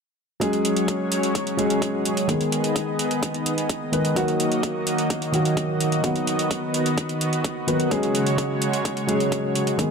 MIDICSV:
0, 0, Header, 1, 4, 480
1, 0, Start_track
1, 0, Key_signature, 6, "major"
1, 0, Tempo, 468750
1, 423, Time_signature, 4, 2, 24, 8
1, 10145, End_track
2, 0, Start_track
2, 0, Title_t, "Analog synth pad"
2, 0, Program_c, 0, 89
2, 423, Note_on_c, 0, 54, 75
2, 423, Note_on_c, 0, 61, 68
2, 423, Note_on_c, 0, 68, 71
2, 424, Note_on_c, 0, 73, 85
2, 2324, Note_off_c, 0, 54, 0
2, 2324, Note_off_c, 0, 61, 0
2, 2324, Note_off_c, 0, 73, 0
2, 2342, Note_on_c, 0, 51, 77
2, 2342, Note_on_c, 0, 75, 84
2, 2343, Note_on_c, 0, 59, 68
2, 4224, Note_off_c, 0, 68, 0
2, 4244, Note_off_c, 0, 59, 0
2, 4265, Note_on_c, 0, 58, 70
2, 4265, Note_on_c, 0, 66, 71
2, 6165, Note_off_c, 0, 58, 0
2, 6183, Note_on_c, 0, 59, 70
2, 8062, Note_off_c, 0, 51, 0
2, 8062, Note_off_c, 0, 75, 0
2, 8084, Note_off_c, 0, 59, 0
2, 8104, Note_on_c, 0, 49, 76
2, 8104, Note_on_c, 0, 56, 71
2, 8104, Note_on_c, 0, 73, 86
2, 9983, Note_off_c, 0, 66, 0
2, 10004, Note_off_c, 0, 49, 0
2, 10004, Note_off_c, 0, 56, 0
2, 10004, Note_off_c, 0, 73, 0
2, 10025, Note_on_c, 0, 51, 78
2, 10025, Note_on_c, 0, 59, 71
2, 10025, Note_on_c, 0, 68, 71
2, 10026, Note_on_c, 0, 75, 90
2, 10145, Note_off_c, 0, 51, 0
2, 10145, Note_off_c, 0, 59, 0
2, 10145, Note_off_c, 0, 68, 0
2, 10145, Note_off_c, 0, 75, 0
2, 10145, End_track
3, 0, Start_track
3, 0, Title_t, "Grand piano"
3, 0, Program_c, 1, 0
3, 409, Note_on_c, 1, 54, 84
3, 417, Note_on_c, 1, 56, 79
3, 425, Note_on_c, 1, 61, 78
3, 433, Note_on_c, 1, 68, 96
3, 601, Control_c, 1, 64, 127
3, 1587, Note_off_c, 1, 54, 0
3, 1591, Note_off_c, 1, 56, 0
3, 1595, Note_off_c, 1, 61, 0
3, 1599, Note_off_c, 1, 68, 0
3, 1610, Note_on_c, 1, 54, 86
3, 1618, Note_on_c, 1, 56, 78
3, 1626, Note_on_c, 1, 61, 76
3, 1634, Note_on_c, 1, 68, 93
3, 2308, Note_off_c, 1, 54, 0
3, 2312, Note_off_c, 1, 56, 0
3, 2316, Note_off_c, 1, 61, 0
3, 2320, Note_off_c, 1, 68, 0
3, 2329, Note_on_c, 1, 51, 68
3, 2337, Note_on_c, 1, 56, 61
3, 2345, Note_on_c, 1, 59, 61
3, 2354, Note_on_c, 1, 68, 78
3, 2357, Control_c, 1, 64, 0
3, 2528, Control_c, 1, 64, 127
3, 3987, Note_off_c, 1, 51, 0
3, 3991, Note_off_c, 1, 56, 0
3, 3995, Note_off_c, 1, 59, 0
3, 4000, Note_off_c, 1, 68, 0
3, 4016, Note_on_c, 1, 51, 78
3, 4020, Note_on_c, 1, 56, 69
3, 4025, Note_on_c, 1, 59, 72
3, 4028, Note_on_c, 1, 71, 85
3, 4230, Note_off_c, 1, 51, 0
3, 4233, Note_off_c, 1, 56, 0
3, 4235, Note_off_c, 1, 59, 0
3, 4237, Note_off_c, 1, 71, 0
3, 4250, Note_on_c, 1, 51, 85
3, 4258, Note_on_c, 1, 54, 83
3, 4266, Note_on_c, 1, 58, 78
3, 4273, Note_on_c, 1, 66, 101
3, 4277, Control_c, 1, 64, 0
3, 4475, Control_c, 1, 64, 127
3, 5428, Note_off_c, 1, 51, 0
3, 5432, Note_off_c, 1, 54, 0
3, 5436, Note_off_c, 1, 58, 0
3, 5439, Note_off_c, 1, 66, 0
3, 5450, Note_on_c, 1, 51, 87
3, 5459, Note_on_c, 1, 54, 80
3, 5467, Note_on_c, 1, 58, 80
3, 5475, Note_on_c, 1, 66, 91
3, 6148, Note_off_c, 1, 51, 0
3, 6152, Note_off_c, 1, 54, 0
3, 6156, Note_off_c, 1, 58, 0
3, 6160, Note_off_c, 1, 66, 0
3, 6171, Note_on_c, 1, 51, 65
3, 6180, Note_on_c, 1, 54, 62
3, 6188, Note_on_c, 1, 59, 63
3, 6196, Note_on_c, 1, 66, 76
3, 6197, Control_c, 1, 64, 0
3, 6377, Control_c, 1, 64, 127
3, 7828, Note_off_c, 1, 51, 0
3, 7832, Note_off_c, 1, 54, 0
3, 7836, Note_off_c, 1, 59, 0
3, 7840, Note_off_c, 1, 66, 0
3, 7856, Note_on_c, 1, 51, 75
3, 7860, Note_on_c, 1, 54, 68
3, 7864, Note_on_c, 1, 59, 68
3, 7868, Note_on_c, 1, 71, 82
3, 8071, Note_off_c, 1, 51, 0
3, 8073, Note_off_c, 1, 54, 0
3, 8075, Note_off_c, 1, 59, 0
3, 8077, Note_off_c, 1, 71, 0
3, 8090, Note_on_c, 1, 54, 88
3, 8097, Note_on_c, 1, 56, 79
3, 8105, Note_on_c, 1, 61, 78
3, 8114, Note_on_c, 1, 68, 97
3, 8115, Control_c, 1, 64, 0
3, 8299, Control_c, 1, 64, 127
3, 9268, Note_off_c, 1, 54, 0
3, 9271, Note_off_c, 1, 56, 0
3, 9275, Note_off_c, 1, 61, 0
3, 9280, Note_off_c, 1, 68, 0
3, 9290, Note_on_c, 1, 54, 86
3, 9298, Note_on_c, 1, 56, 78
3, 9305, Note_on_c, 1, 61, 77
3, 9314, Note_on_c, 1, 68, 95
3, 9988, Note_off_c, 1, 54, 0
3, 9992, Note_off_c, 1, 56, 0
3, 9995, Note_off_c, 1, 61, 0
3, 10000, Note_off_c, 1, 68, 0
3, 10010, Note_on_c, 1, 51, 69
3, 10019, Note_on_c, 1, 56, 62
3, 10027, Note_on_c, 1, 59, 63
3, 10034, Note_on_c, 1, 68, 76
3, 10035, Control_c, 1, 64, 0
3, 10145, Note_off_c, 1, 51, 0
3, 10145, Note_off_c, 1, 56, 0
3, 10145, Note_off_c, 1, 59, 0
3, 10145, Note_off_c, 1, 68, 0
3, 10145, End_track
4, 0, Start_track
4, 0, Title_t, "Drums"
4, 423, Note_on_c, 9, 36, 115
4, 424, Note_on_c, 9, 42, 72
4, 525, Note_off_c, 9, 36, 0
4, 526, Note_off_c, 9, 42, 0
4, 544, Note_on_c, 9, 42, 34
4, 647, Note_off_c, 9, 42, 0
4, 664, Note_on_c, 9, 42, 74
4, 766, Note_off_c, 9, 42, 0
4, 783, Note_on_c, 9, 42, 50
4, 886, Note_off_c, 9, 42, 0
4, 903, Note_on_c, 9, 36, 107
4, 903, Note_on_c, 9, 42, 79
4, 1005, Note_off_c, 9, 36, 0
4, 1006, Note_off_c, 9, 42, 0
4, 1143, Note_on_c, 9, 42, 74
4, 1246, Note_off_c, 9, 42, 0
4, 1264, Note_on_c, 9, 42, 50
4, 1366, Note_off_c, 9, 42, 0
4, 1383, Note_on_c, 9, 36, 109
4, 1384, Note_on_c, 9, 42, 78
4, 1485, Note_off_c, 9, 36, 0
4, 1486, Note_off_c, 9, 42, 0
4, 1504, Note_on_c, 9, 42, 36
4, 1606, Note_off_c, 9, 42, 0
4, 1624, Note_on_c, 9, 42, 74
4, 1726, Note_off_c, 9, 42, 0
4, 1743, Note_on_c, 9, 42, 48
4, 1846, Note_off_c, 9, 42, 0
4, 1863, Note_on_c, 9, 36, 106
4, 1863, Note_on_c, 9, 42, 76
4, 1965, Note_off_c, 9, 36, 0
4, 1966, Note_off_c, 9, 42, 0
4, 2104, Note_on_c, 9, 42, 71
4, 2206, Note_off_c, 9, 42, 0
4, 2224, Note_on_c, 9, 42, 53
4, 2326, Note_off_c, 9, 42, 0
4, 2343, Note_on_c, 9, 36, 115
4, 2343, Note_on_c, 9, 42, 74
4, 2445, Note_off_c, 9, 36, 0
4, 2446, Note_off_c, 9, 42, 0
4, 2464, Note_on_c, 9, 42, 35
4, 2567, Note_off_c, 9, 42, 0
4, 2584, Note_on_c, 9, 42, 68
4, 2686, Note_off_c, 9, 42, 0
4, 2704, Note_on_c, 9, 42, 49
4, 2806, Note_off_c, 9, 42, 0
4, 2823, Note_on_c, 9, 36, 116
4, 2824, Note_on_c, 9, 42, 75
4, 2926, Note_off_c, 9, 36, 0
4, 2926, Note_off_c, 9, 42, 0
4, 3064, Note_on_c, 9, 42, 70
4, 3166, Note_off_c, 9, 42, 0
4, 3184, Note_on_c, 9, 42, 49
4, 3286, Note_off_c, 9, 42, 0
4, 3304, Note_on_c, 9, 36, 112
4, 3304, Note_on_c, 9, 42, 77
4, 3406, Note_off_c, 9, 36, 0
4, 3407, Note_off_c, 9, 42, 0
4, 3425, Note_on_c, 9, 42, 34
4, 3527, Note_off_c, 9, 42, 0
4, 3544, Note_on_c, 9, 42, 75
4, 3646, Note_off_c, 9, 42, 0
4, 3664, Note_on_c, 9, 42, 50
4, 3767, Note_off_c, 9, 42, 0
4, 3783, Note_on_c, 9, 36, 111
4, 3783, Note_on_c, 9, 42, 73
4, 3886, Note_off_c, 9, 36, 0
4, 3886, Note_off_c, 9, 42, 0
4, 4024, Note_on_c, 9, 42, 70
4, 4126, Note_off_c, 9, 42, 0
4, 4144, Note_on_c, 9, 42, 52
4, 4247, Note_off_c, 9, 42, 0
4, 4264, Note_on_c, 9, 36, 121
4, 4264, Note_on_c, 9, 42, 70
4, 4366, Note_off_c, 9, 36, 0
4, 4366, Note_off_c, 9, 42, 0
4, 4385, Note_on_c, 9, 42, 33
4, 4487, Note_off_c, 9, 42, 0
4, 4504, Note_on_c, 9, 42, 69
4, 4606, Note_off_c, 9, 42, 0
4, 4625, Note_on_c, 9, 42, 48
4, 4727, Note_off_c, 9, 42, 0
4, 4744, Note_on_c, 9, 36, 112
4, 4744, Note_on_c, 9, 42, 71
4, 4846, Note_off_c, 9, 36, 0
4, 4847, Note_off_c, 9, 42, 0
4, 4984, Note_on_c, 9, 42, 73
4, 5087, Note_off_c, 9, 42, 0
4, 5104, Note_on_c, 9, 42, 48
4, 5207, Note_off_c, 9, 42, 0
4, 5224, Note_on_c, 9, 36, 114
4, 5224, Note_on_c, 9, 42, 75
4, 5326, Note_off_c, 9, 36, 0
4, 5327, Note_off_c, 9, 42, 0
4, 5345, Note_on_c, 9, 42, 33
4, 5447, Note_off_c, 9, 42, 0
4, 5464, Note_on_c, 9, 42, 71
4, 5567, Note_off_c, 9, 42, 0
4, 5585, Note_on_c, 9, 42, 46
4, 5687, Note_off_c, 9, 42, 0
4, 5703, Note_on_c, 9, 36, 117
4, 5704, Note_on_c, 9, 42, 70
4, 5806, Note_off_c, 9, 36, 0
4, 5806, Note_off_c, 9, 42, 0
4, 5944, Note_on_c, 9, 42, 70
4, 6047, Note_off_c, 9, 42, 0
4, 6064, Note_on_c, 9, 42, 47
4, 6166, Note_off_c, 9, 42, 0
4, 6183, Note_on_c, 9, 36, 118
4, 6184, Note_on_c, 9, 42, 66
4, 6285, Note_off_c, 9, 36, 0
4, 6286, Note_off_c, 9, 42, 0
4, 6304, Note_on_c, 9, 42, 33
4, 6406, Note_off_c, 9, 42, 0
4, 6424, Note_on_c, 9, 42, 67
4, 6527, Note_off_c, 9, 42, 0
4, 6544, Note_on_c, 9, 42, 48
4, 6647, Note_off_c, 9, 42, 0
4, 6663, Note_on_c, 9, 36, 109
4, 6663, Note_on_c, 9, 42, 74
4, 6765, Note_off_c, 9, 36, 0
4, 6766, Note_off_c, 9, 42, 0
4, 6903, Note_on_c, 9, 42, 70
4, 7006, Note_off_c, 9, 42, 0
4, 7024, Note_on_c, 9, 42, 46
4, 7126, Note_off_c, 9, 42, 0
4, 7143, Note_on_c, 9, 36, 114
4, 7143, Note_on_c, 9, 42, 71
4, 7245, Note_off_c, 9, 36, 0
4, 7246, Note_off_c, 9, 42, 0
4, 7263, Note_on_c, 9, 42, 32
4, 7366, Note_off_c, 9, 42, 0
4, 7384, Note_on_c, 9, 42, 67
4, 7486, Note_off_c, 9, 42, 0
4, 7504, Note_on_c, 9, 42, 44
4, 7606, Note_off_c, 9, 42, 0
4, 7623, Note_on_c, 9, 36, 109
4, 7623, Note_on_c, 9, 42, 67
4, 7725, Note_off_c, 9, 36, 0
4, 7726, Note_off_c, 9, 42, 0
4, 7863, Note_on_c, 9, 42, 67
4, 7965, Note_off_c, 9, 42, 0
4, 7983, Note_on_c, 9, 42, 48
4, 8086, Note_off_c, 9, 42, 0
4, 8103, Note_on_c, 9, 36, 114
4, 8103, Note_on_c, 9, 42, 66
4, 8205, Note_off_c, 9, 36, 0
4, 8206, Note_off_c, 9, 42, 0
4, 8224, Note_on_c, 9, 42, 32
4, 8326, Note_off_c, 9, 42, 0
4, 8343, Note_on_c, 9, 42, 68
4, 8445, Note_off_c, 9, 42, 0
4, 8463, Note_on_c, 9, 42, 48
4, 8566, Note_off_c, 9, 42, 0
4, 8583, Note_on_c, 9, 36, 111
4, 8584, Note_on_c, 9, 42, 73
4, 8686, Note_off_c, 9, 36, 0
4, 8686, Note_off_c, 9, 42, 0
4, 8823, Note_on_c, 9, 42, 69
4, 8926, Note_off_c, 9, 42, 0
4, 8944, Note_on_c, 9, 42, 49
4, 9047, Note_off_c, 9, 42, 0
4, 9063, Note_on_c, 9, 36, 110
4, 9064, Note_on_c, 9, 42, 74
4, 9166, Note_off_c, 9, 36, 0
4, 9166, Note_off_c, 9, 42, 0
4, 9184, Note_on_c, 9, 42, 33
4, 9286, Note_off_c, 9, 42, 0
4, 9304, Note_on_c, 9, 42, 73
4, 9406, Note_off_c, 9, 42, 0
4, 9425, Note_on_c, 9, 42, 45
4, 9527, Note_off_c, 9, 42, 0
4, 9543, Note_on_c, 9, 36, 111
4, 9543, Note_on_c, 9, 42, 71
4, 9646, Note_off_c, 9, 36, 0
4, 9646, Note_off_c, 9, 42, 0
4, 9784, Note_on_c, 9, 42, 69
4, 9886, Note_off_c, 9, 42, 0
4, 9903, Note_on_c, 9, 42, 47
4, 10006, Note_off_c, 9, 42, 0
4, 10023, Note_on_c, 9, 36, 110
4, 10024, Note_on_c, 9, 42, 71
4, 10125, Note_off_c, 9, 36, 0
4, 10126, Note_off_c, 9, 42, 0
4, 10145, End_track
0, 0, End_of_file